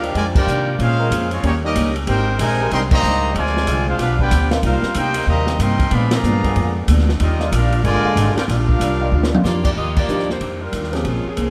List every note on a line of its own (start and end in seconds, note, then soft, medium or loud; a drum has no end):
0.00 0.14 D2 loud
0.00 0.44 F3 loud
0.00 0.13 A#3 medium
0.00 0.13 D4 medium
0.00 0.14 D4 medium
0.00 0.44 D4 medium
0.00 0.44 D#4 medium
0.00 0.13 F4 medium
0.00 0.14 G4 medium
0.00 0.44 G4 loud
0.00 0.14 A#4 medium
0.00 0.14 F5 loud
0.00 ride medium
0.15 0.46 F2 medium
0.15 0.36 D#3 soft
0.15 0.36 G3 soft
0.15 0.24 G#3 medium
0.15 0.37 D4 medium
0.15 0.25 F4 medium
0.15 0.37 F4 medium
0.15 0.25 A#4 medium
0.15 0.25 D5 medium
0.15 0.25 G#5 medium
0.15 ride medium
0.35 0.76 A#3 medium
0.35 0.76 D4 medium
0.35 0.77 F4 medium
0.35 0.76 G4 medium
0.35 0.77 A#4 medium
0.35 0.77 D5 medium
0.35 0.77 G5 loud
0.35 kick loud
0.35 crash medium
0.47 0.78 C3 loud
0.47 0.68 D#3 medium
0.47 0.69 G3 medium
0.47 0.69 D4 medium
0.47 0.69 F4 medium
0.47 hi-hat pedal medium
0.78 1.10 A#2 loud
0.78 1.27 G#3 medium
0.78 1.00 A#3 medium
0.78 1.27 C#4 medium
0.78 1.01 C#4 medium
0.78 1.28 C#4 medium
0.78 1.27 F4 medium
0.78 1.28 G#4 medium
0.78 1.01 G#4 medium
0.78 1.28 C5 medium
0.78 1.01 C5 medium
0.78 1.28 F5 loud
0.78 ride medium
0.99 1.07 G#3 medium
0.99 1.07 C4 medium
0.99 1.07 C#4 medium
0.99 1.07 A#4 loud
1.11 1.42 F2 loud
1.11 1.32 A#3 medium
1.11 1.33 C#4 medium
1.11 1.33 G#4 medium
1.11 1.33 C5 medium
1.11 hi-hat pedal medium
1.11 ride medium
1.31 1.43 F3 medium
1.31 1.43 G#3 medium
1.31 1.44 G#3 medium
1.31 1.44 C4 medium
1.31 1.41 C#4 medium
1.31 1.44 F4 medium
1.31 1.44 C#5 medium
1.31 ride medium
1.42 1.74 D#2 medium
1.42 1.64 D#3 medium
1.42 1.52 G3 medium
1.42 1.51 A#3 medium
1.42 1.65 A#3 soft
1.42 1.54 A#3 medium
1.42 1.51 C#4 medium
1.42 1.65 C#4 medium
1.42 1.54 D#4 medium
1.42 1.65 G4 medium
1.42 1.54 G4 medium
1.42 1.54 C#5 loud
1.42 ride medium
1.63 1.93 G3 medium
1.63 1.93 A#3 medium
1.63 1.94 C#4 medium
1.63 1.93 D#4 medium
1.63 1.94 G4 medium
1.63 1.94 A#4 medium
1.63 1.94 D#5 loud
1.75 2.06 C#2 loud
1.75 1.96 D#3 medium
1.75 1.97 A#3 medium
1.75 1.97 C#4 medium
1.75 1.97 G4 medium
1.75 hi-hat pedal medium
1.75 ride medium
1.96 ride medium
2.07 2.38 G#1 loud
2.07 2.29 G#3 medium
2.07 2.37 C4 medium
2.07 2.29 C4 medium
2.07 2.30 D4 medium
2.07 2.37 D#4 medium
2.07 2.38 D#4 medium
2.07 2.37 G4 medium
2.07 2.30 G4 medium
2.07 2.37 A#4 medium
2.07 2.38 C5 medium
2.07 2.37 G5 loud
2.07 ride medium
2.38 2.70 A#1 medium
2.38 2.68 C3 medium
2.38 2.69 D#3 medium
2.38 2.69 G#3 medium
2.38 2.60 G#3 medium
2.38 2.61 C4 medium
2.38 2.61 D4 medium
2.38 2.70 D#4 loud
2.38 2.70 A#4 loud
2.38 2.70 C5 medium
2.38 2.70 G#5 loud
2.38 hi-hat pedal medium
2.38 ride medium
2.42 2.61 G4 medium
2.59 2.67 G3 loud
2.59 2.67 C4 medium
2.59 2.67 D4 loud
2.59 2.67 A#4 loud
2.71 3.02 C2 medium
2.71 2.80 D#3 loud
2.71 2.81 G3 medium
2.71 2.93 G#3 medium
2.71 2.81 C4 medium
2.71 2.93 C4 medium
2.71 2.94 D4 medium
2.71 2.94 G4 medium
2.71 2.82 A#4 medium
2.71 2.82 D#5 medium
2.71 2.82 G5 medium
2.71 2.81 C6 loud
2.71 ride medium
2.91 3.32 D#3 medium
2.91 3.32 G3 medium
2.91 3.32 A#3 medium
2.91 3.33 G4 loud
2.91 3.33 C5 loud
2.91 3.33 D#5 loud
2.91 3.33 A#5 loud
2.91 kick loud
2.91 crash medium
3.03 3.34 C#2 loud
3.03 3.24 G#3 medium
3.03 3.25 C4 medium
3.03 3.25 D4 medium
3.03 3.25 G4 medium
3.03 hi-hat pedal medium
3.35 3.66 D2 loud
3.35 3.87 C3 medium
3.35 3.56 D3 soft
3.35 3.87 F3 loud
3.35 3.87 G#3 medium
3.35 3.56 G#3 medium
3.35 3.57 C4 medium
3.35 3.57 F4 medium
3.35 3.88 F4 medium
3.35 3.88 C5 medium
3.35 3.88 D5 medium
3.35 3.88 G#5 loud
3.35 ride medium
3.46 snare soft
3.57 snare medium
3.66 3.98 C2 loud
3.66 3.88 D3 medium
3.66 3.99 F3 medium
3.66 3.89 G#3 medium
3.66 3.99 C4 medium
3.66 3.89 C4 medium
3.66 3.99 D4 medium
3.66 3.89 F4 medium
3.66 3.99 G#4 loud
3.66 hi-hat pedal medium
3.66 ride medium
3.88 3.99 G#3 medium
3.88 3.99 C4 medium
3.88 3.99 D4 medium
3.88 3.98 F4 medium
3.88 3.99 G#4 medium
3.88 3.99 C5 medium
3.88 3.99 F5 medium
3.99 4.30 B1 medium
3.99 4.20 G2 soft
3.99 4.21 F3 soft
3.99 4.18 B3 medium
3.99 4.21 B3 medium
3.99 4.18 D4 medium
3.99 4.21 D4 medium
3.99 4.19 D4 medium
3.99 4.18 F4 medium
3.99 4.19 G4 medium
3.99 4.19 B4 medium
3.99 4.19 F5 loud
3.99 snare soft
3.99 ride medium
4.19 4.49 B3 medium
4.19 4.49 D4 medium
4.19 4.50 F4 loud
4.19 4.49 G4 medium
4.19 4.50 B4 loud
4.19 4.50 D5 medium
4.19 4.50 G5 loud
4.19 kick medium
4.31 4.62 D2 loud
4.31 4.52 G2 medium
4.31 4.53 F3 medium
4.31 4.53 B3 medium
4.31 4.53 D4 medium
4.31 hi-hat pedal medium
4.31 ride medium
4.50 4.59 D#3 medium
4.50 4.59 A#3 loud
4.50 4.59 C4 medium
4.50 4.59 F4 loud
4.50 snare medium
4.50 ride medium
4.62 4.82 C2 loud
4.62 4.84 C3 medium
4.62 4.84 G3 soft
4.62 4.94 G3 medium
4.62 4.85 A#3 medium
4.62 4.94 A#3 medium
4.62 4.85 D#4 medium
4.62 4.94 D#4 medium
4.62 4.94 F4 medium
4.62 4.94 A#4 medium
4.62 4.94 C5 medium
4.62 4.94 F5 loud
4.62 ride medium
4.82 muted upright bass stroke soft
4.82 snare medium
4.94 5.26 D2 medium
4.94 5.16 C3 medium
4.94 5.16 G3 medium
4.94 5.17 A#3 medium
4.94 5.25 A#3 medium
4.94 5.17 D#4 medium
4.94 5.26 D#4 medium
4.94 5.25 G4 medium
4.94 5.26 A#4 medium
4.94 5.26 C5 medium
4.94 5.26 G5 loud
4.94 hi-hat pedal medium
4.94 ride medium
5.14 5.57 D#3 loud
5.14 5.57 A#3 medium
5.14 5.57 C4 medium
5.14 5.57 G4 loud
5.14 ride medium
5.26 5.58 D#2 medium
5.26 5.48 C3 medium
5.26 5.57 D#3 medium
5.26 5.57 G3 medium
5.26 5.48 G3 soft
5.26 5.57 A#3 medium
5.26 5.49 A#3 medium
5.26 5.49 D#4 medium
5.26 5.58 G4 medium
5.26 5.58 C5 medium
5.26 5.58 D#5 medium
5.26 5.58 A#5 loud
5.47 snare medium
5.59 5.90 G2 loud
5.59 5.80 C3 medium
5.59 5.91 D#3 medium
5.59 5.91 G3 medium
5.59 5.81 G3 medium
5.59 5.81 A#3 medium
5.59 5.91 C4 medium
5.59 5.81 D#4 medium
5.59 5.93 A#4 medium
5.59 5.93 D#5 medium
5.59 5.92 G5 medium
5.59 5.93 C6 loud
5.59 hi-hat pedal medium
5.59 ride medium
5.79 kick medium
5.79 ride medium
5.91 6.12 A#2 medium
5.91 6.22 A#2 loud
5.91 6.12 F3 medium
5.91 6.13 G#3 medium
5.91 6.12 G#3 medium
5.91 6.12 B3 medium
5.91 6.13 B3 medium
5.91 6.13 D4 medium
5.91 6.12 G#4 medium
5.91 6.12 D5 medium
5.91 6.12 F5 medium
5.91 6.12 B5 loud
5.91 ride medium
6.11 6.76 D3 medium
6.11 6.76 F3 medium
6.11 6.76 A#3 medium
6.11 6.77 G#4 medium
6.11 6.77 D5 medium
6.11 6.77 F5 medium
6.11 6.77 A#5 loud
6.11 snare loud
6.11 ride medium
6.23 6.55 G2 medium
6.23 6.45 A#2 medium
6.23 6.45 G#3 medium
6.23 6.45 B3 medium
6.23 6.46 D4 medium
6.23 hi-hat pedal medium
6.43 6.85 B2 medium
6.43 6.85 D3 loud
6.43 6.85 A#3 medium
6.43 6.85 G#4 loud
6.43 kick medium
6.43 ride medium
6.55 6.87 F2 medium
6.55 6.77 A#2 medium
6.55 6.77 G#3 medium
6.55 6.77 B3 medium
6.55 6.78 D4 medium
6.55 ride medium
6.88 7.19 D2 loud
6.88 7.09 A#2 medium
6.88 7.10 G#3 medium
6.88 7.10 B3 medium
6.88 7.10 D4 medium
6.88 hi-hat pedal medium
6.88 ride medium
6.98 snare soft
7.09 snare medium
7.19 7.51 D#2 loud
7.19 7.41 D#3 medium
7.19 7.49 G3 medium
7.19 7.42 G3 medium
7.19 7.49 A#3 medium
7.19 7.51 A#3 medium
7.19 7.42 D4 medium
7.19 7.49 D#4 medium
7.19 7.51 F4 medium
7.19 7.42 F4 medium
7.19 7.51 G4 medium
7.19 7.51 D#5 loud
7.19 ride medium
7.39 7.48 D#3 loud
7.39 7.47 G3 medium
7.39 7.48 D4 medium
7.39 7.48 F4 loud
7.39 snare soft
7.51 7.83 A#1 loud
7.51 7.73 D#3 medium
7.51 7.73 G3 medium
7.51 7.84 A#3 medium
7.51 7.73 D4 medium
7.51 7.84 D4 medium
7.51 7.85 D4 loud
7.51 7.84 F4 medium
7.51 7.74 F4 medium
7.51 7.85 G4 medium
7.51 7.84 A#4 medium
7.51 7.85 F5 loud
7.51 hi-hat pedal medium
7.51 ride medium
7.72 ride medium
7.83 8.02 G1 medium
7.83 8.32 A#2 loud
7.83 8.32 D3 loud
7.83 8.05 D#3 medium
7.83 8.06 G3 medium
7.83 8.32 G#3 loud
7.83 8.06 D4 medium
7.83 8.33 F4 loud
7.83 8.07 F4 medium
7.83 8.33 A#4 loud
7.83 8.33 D5 loud
7.83 8.33 G#5 loud
7.83 ride medium
8.03 8.45 D3 loud
8.03 8.45 F3 loud
8.03 8.45 D4 loud
8.03 8.45 F4 loud
8.03 muted upright bass stroke soft
8.16 8.34 G#1 loud
8.16 8.38 D#3 medium
8.16 8.38 G3 medium
8.16 8.38 D4 medium
8.16 8.39 F4 medium
8.16 hi-hat pedal medium
8.16 ride medium
8.34 8.40 A#3 medium
8.34 8.40 D4 medium
8.34 8.43 F4 medium
8.34 8.40 G4 medium
8.34 8.43 A#4 medium
8.34 8.43 D5 medium
8.34 8.43 G5 medium
8.34 muted upright bass stroke soft
8.34 snare medium
8.34 ride medium
8.46 8.79 A#1 loud
8.46 8.70 D#3 medium
8.46 9.39 A#3 medium
8.46 9.39 D4 medium
8.46 9.41 D4 medium
8.46 9.39 F4 medium
8.46 9.41 G4 medium
8.46 9.41 A#4 medium
8.46 9.41 F5 loud
8.46 snare soft
8.46 ride medium
8.50 8.70 G3 medium
8.50 8.70 D4 medium
8.50 8.71 F4 medium
8.69 kick medium
8.79 9.11 C2 loud
8.79 9.02 D#3 medium
8.79 9.02 G3 medium
8.79 9.02 D4 medium
8.79 9.03 F4 medium
8.79 hi-hat pedal medium
8.79 ride medium
9.00 9.08 D#3 loud
9.00 9.08 G3 medium
9.00 9.08 D4 medium
9.00 9.08 F4 loud
9.12 9.43 D2 medium
9.12 9.33 D#3 medium
9.12 9.34 G3 medium
9.12 9.34 D4 medium
9.12 9.35 F4 medium
9.23 snare medium
9.32 9.40 D#3 loud
9.32 9.40 G3 medium
9.32 9.40 D4 medium
9.32 9.40 F4 loud
9.32 mid tom loud
9.44 9.75 F2 loud
9.44 9.66 D#3 medium
9.44 9.66 G3 medium
9.44 9.63 A#3 medium
9.44 9.67 D4 medium
9.44 9.64 F4 medium
9.44 9.67 F4 medium
9.44 9.63 G4 medium
9.44 9.63 D5 loud
9.44 snare medium
9.44 hi-hat pedal medium
9.65 9.70 A#3 medium
9.65 9.70 F4 medium
9.65 9.70 G4 medium
9.65 9.70 D5 loud
9.65 kick medium
9.65 crash medium
9.76 10.07 D#2 medium
9.76 9.98 D#3 medium
9.76 9.98 G3 soft
9.76 9.96 A#3 medium
9.76 9.99 D4 medium
9.76 9.96 F4 medium
9.76 9.99 F4 medium
9.76 9.96 G4 medium
9.76 9.96 D#5 loud
9.96 10.27 A#3 medium
9.96 10.27 F4 medium
9.96 10.27 G4 medium
9.96 10.27 D5 loud
9.96 kick medium
9.96 crash medium
10.08 10.39 D2 medium
10.08 10.29 D#3 medium
10.08 10.26 F3 medium
10.08 10.30 G3 medium
10.08 10.27 A#3 medium
10.08 10.27 D4 medium
10.08 10.30 D4 medium
10.08 10.27 D#4 medium
10.08 10.30 F4 medium
10.08 10.27 G4 medium
10.08 hi-hat pedal medium
10.19 snare soft
10.30 10.59 A#3 medium
10.30 10.60 F4 medium
10.30 10.60 G4 medium
10.30 10.60 C5 medium
10.30 snare soft
10.40 10.72 F2 medium
10.40 10.62 D#3 soft
10.40 10.62 G3 soft
10.40 10.62 D4 soft
10.40 10.63 F4 medium
10.40 ride medium
10.62 10.93 G3 medium
10.62 10.93 D4 medium
10.62 10.94 F4 medium
10.62 10.93 A#4 loud
10.72 11.04 D#2 loud
10.72 10.94 D#3 medium
10.72 10.94 G3 medium
10.72 10.94 D4 medium
10.72 10.94 F4 medium
10.72 hi-hat pedal medium
10.72 ride medium
10.84 snare soft
10.93 11.35 F3 medium
10.93 11.05 F3 medium
10.93 11.35 A#3 medium
10.93 11.06 A#3 medium
10.93 11.35 C4 medium
10.93 11.35 C#4 medium
10.93 11.06 D4 medium
10.93 11.06 G4 medium
10.93 11.35 G#4 medium
10.93 snare soft
10.93 ride medium
11.04 11.23 A#1 medium
11.04 11.26 G#3 medium
11.04 11.26 A#3 medium
11.04 11.26 C4 medium
11.04 11.26 C#4 medium
11.04 11.26 F4 medium
11.04 11.27 G#4 medium
11.04 11.27 C5 soft
11.04 ride medium
11.25 11.50 F3 medium
11.25 11.50 C4 medium
11.25 11.50 C#4 medium
11.25 11.50 G#4 medium
11.25 muted upright bass stroke soft
11.36 11.50 C2 medium
11.36 11.50 A#3 medium
11.36 11.50 C#4 medium
11.36 11.50 G#4 medium
11.36 11.50 C5 medium
11.36 hi-hat pedal medium
11.36 ride medium